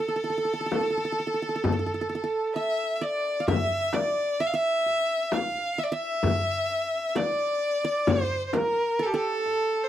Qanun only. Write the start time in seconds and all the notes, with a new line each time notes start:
0.08 A4
0.16 A4
0.24 A4
0.30 A4
0.38 A4
0.45 A4
0.54 A4
0.61 A4
0.66 A4
0.74 A4
0.81 A4
0.90 A4
0.97 A4
1.05 A4
1.12 A4
1.20 A4
1.27 A4
1.34 A4
1.42 A4
1.49 A4
1.56 A4
1.64 A4
1.72 A4
1.79 A4
1.86 A4
1.94 A4
2.01 A4
2.09 A4
2.15 A4
2.24 A4
2.56 E5
3.01 D5
3.40 F5
3.48 E5
3.93 D5
4.40 E5
4.54 E5
5.78 E5
5.92 E5
7.16 D5
7.85 D5
8.08 C5
8.54 A#4
8.99 A4
9.14 A4